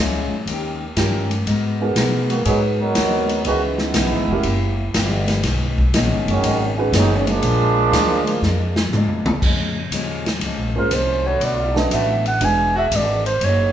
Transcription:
Already playing: upright bass C#2
0.00 steel-string acoustic guitar A#2 G#3 C#4 E4
0.31 muted upright bass stroke
0.46 upright bass D#2, steel-string acoustic guitar D#3 C#4 G4 A#4, ride
0.96 upright bass G2, steel-string acoustic guitar D#3 C#4 G4 A#4, grand piano C#4 D#4 F4 G4 A#4, snare, hi-hat pedal, ride
1.31 ride
1.46 upright bass G#2, steel-string acoustic guitar G#3 B3 F#4 A#4, ride
1.80 grand piano B3 D#4 F#4 G#4 A#4
1.95 upright bass B2, steel-string acoustic guitar G#3 B3 F#4 A#4, snare, hi-hat pedal, ride
2.30 trombone section D#3 A#3 B3 F#4, ride
2.45 upright bass G#2, trombone section F#3 B3 D#4 G#4, steel-string acoustic guitar G#3 B3 F#4 A#4, grand piano B3 D#4 F#4 G#4 B4, ride
2.80 trombone section F#3 B3 D#4 A#4
2.95 upright bass D#2, steel-string acoustic guitar G#3 B3 F#4 A#4, snare, hi-hat pedal, ride
3.29 ride
3.45 upright bass C#2, steel-string acoustic guitar C#3 E3 B3 D#4, trombone section D#3 G#3 B3 F#4, grand piano C#4 E4 G#4 B4 D#5, ride
3.78 trombone section G#3 B3 D#4 E4, snare
3.94 upright bass B1, steel-string acoustic guitar C#3 E3 B3 D#4, snare, hi-hat pedal, ride
4.11 upright bass G#1
4.28 upright bass E1, grand piano C#4 E4 F#4
4.32 grand piano G4 A#4
4.43 upright bass F#1, steel-string acoustic guitar F#3 A#3 E4 G4, ride
4.94 upright bass G1, steel-string acoustic guitar F#3 A#3 E4 G4, snare, hi-hat pedal, ride
5.28 snare, ride
5.43 upright bass B1, steel-string acoustic guitar B2 D#3 G#3 C#4, snare, ride
5.78 kick
5.94 upright bass A#1, steel-string acoustic guitar B2 D#3 G#3 C#4, snare, hi-hat pedal, ride
6.11 upright bass G#1
6.26 upright bass F#1, trombone section D#3 F#3 C#4, ride
6.30 trombone section G#3
6.42 upright bass G#1, steel-string acoustic guitar B2 D#3 G#3 C#4, ride
6.78 grand piano C#4 D#4 F#4 G#4 B4
6.92 upright bass F#1, steel-string acoustic guitar B2 D#3 G#3 C#4, trombone section F#3 G#3 C#4 D#4, snare, hi-hat pedal, ride
7.17 trombone section C#4
7.27 trombone section F3 G#3 A#3 D4, ride
7.42 upright bass A#1, steel-string acoustic guitar A#2 F3, ride
7.47 steel-string acoustic guitar G#3 D4
7.91 upright bass D2, steel-string acoustic guitar A#2 F3 G#3 D4, snare, hi-hat pedal, ride
8.27 ride
8.42 upright bass F2, steel-string acoustic guitar A#2 F3 G#3, snare
8.46 steel-string acoustic guitar D4
8.76 snare
8.91 upright bass G#2, steel-string acoustic guitar A#2 F3, hi-hat pedal, mid tom
8.95 steel-string acoustic guitar G#3 D4
9.07 upright bass F2
9.24 upright bass D2, mid tom
9.42 upright bass F2, steel-string acoustic guitar A#2 F3 G#3, kick, crash
9.46 steel-string acoustic guitar C#4
9.89 upright bass D#2, steel-string acoustic guitar A#2 G#3, hi-hat pedal, ride
9.94 steel-string acoustic guitar F3 C#4
10.26 snare, ride
10.40 upright bass C#2, steel-string acoustic guitar A#2, ride
10.44 steel-string acoustic guitar F3 G#3 C#4
10.56 upright bass A#1
10.74 upright bass G#1, grand piano A#3 C#4 F4 G#4 C5, clarinet A#4
10.91 upright bass C2, steel-string acoustic guitar A#2 F3 G#3 C#4, clarinet C5, hi-hat pedal, ride
11.25 trombone section D3 A3 B3 F#4, clarinet C#5
11.40 upright bass B1, steel-string acoustic guitar B2 A3 D4, clarinet D5, ride
11.44 steel-string acoustic guitar F#4
11.75 grand piano A3 C#4 D4 F#4 B4, clarinet D#5, snare
11.90 upright bass A1, steel-string acoustic guitar B2 A3 D4 F#4, trombone section D3 A3 B3 F#4, clarinet E5, hi-hat pedal, ride
12.26 clarinet F#5, ride
12.41 upright bass E1, steel-string acoustic guitar E3 G#3 D4 F#4, grand piano G#3 D4 E4 F#4 B4, clarinet G#5, ride
12.75 trombone section E3 G#3 D4 F#4, clarinet E5
12.91 upright bass G#1, steel-string acoustic guitar E3 G#3 D4 F#4, hi-hat pedal, ride
12.96 clarinet D5
13.26 clarinet C5, ride
13.41 upright bass F#1, steel-string acoustic guitar F#3 A#3 D#4 G#4, clarinet C#5, ride

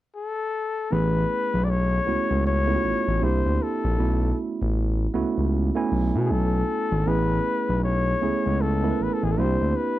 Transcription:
0.15 flugelhorn A4
0.91 analog synth bass A1, tine electric piano A3 B3 C#4 E4 G#4, flugelhorn B4
1.54 analog synth bass B1
1.64 flugelhorn D5
1.70 flugelhorn C#5
2.06 analog synth bass C#2, tine electric piano A3 B3 C#4 E4 F#4
2.31 analog synth bass C#2
2.47 flugelhorn C#5
2.67 tine electric piano A3 B3 C#4 E4 F4
2.75 tine electric piano F#4
2.85 analog synth bass A1
3.08 analog synth bass A1
3.21 analog synth bass C2, tine electric piano A#3 C4 D4 E4 G4, flugelhorn C5
3.46 analog synth bass D2
3.63 flugelhorn A4
3.84 analog synth bass A#1
3.98 analog synth bass B1, tine electric piano A3 B3 C#4 E4 F#4
4.62 analog synth bass A1
5.14 analog synth bass C#2, tine electric piano A3 B3 C#4 E4 F#4
5.38 analog synth bass C#2
5.75 tine electric piano A3 B3 C#4 E4 G#5
5.92 analog synth bass B1
6.15 analog synth bass B2
6.25 flugelhorn G#4
6.30 analog synth bass B1, flugelhorn A4
6.92 analog synth bass G#1
7.06 analog synth bass A1, tine electric piano A3 B3 C#4 E4 G#4, flugelhorn B4
7.69 analog synth bass B1
7.84 flugelhorn C#5
8.21 analog synth bass C#2, tine electric piano A3 B3 C#4 E4 G#4
8.46 analog synth bass C#2
8.61 flugelhorn A4
8.83 tine electric piano A3 B3 C#4 E4 A#4
8.91 tine electric piano B4
9.00 analog synth bass A1, flugelhorn B4
9.13 flugelhorn A4
9.23 analog synth bass A1, flugelhorn G#4
9.32 flugelhorn A4
9.37 analog synth bass C2, tine electric piano A#3 C4 D4 E4 F#4, flugelhorn C5
9.45 tine electric piano G4
9.62 analog synth bass D2
9.76 flugelhorn B4

